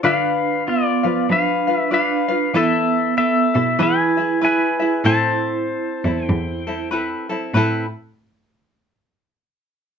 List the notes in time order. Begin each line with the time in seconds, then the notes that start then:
0.03 D3 D4 F4 B4 D5 F5
0.67 B3 F4 D5
1.03 F3 F4 B4 F5
1.29 F3 D4 B4 F5
1.67 F4 B4 F5
1.77 E5
1.91 D4 F4 B4 D5 F5
2.28 F4 B4 F5
2.54 E3 B3 E4 A4 B4 E5
3.17 B3 A4 E5
3.54 B2 E4 A4 E5
3.79 E3 E4 G#4 B4 E5 G#5
3.83 B4
4.17 E4 G#4 E5
4.41 E4 G#4 B4 E5 G#5
4.80 E4 G#4 E5
5.04 A2 C4 E4 A4 C5 A5
6.04 E2 C4 E4 A4
6.25 E2 G5
6.67 C4 E4 A4
6.91 C4 E4 A4 B4
7.29 C4 E4 A4
7.54 A2 C4 E4 A4 B4